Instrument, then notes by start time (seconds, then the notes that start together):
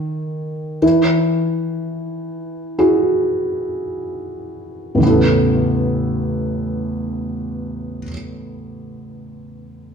felt piano
Already playing: D#3
0.82 E3
2.79 E4 F#4 G#4
4.95 A1 E2
5.00 C#3 B3
5.06 E4 A4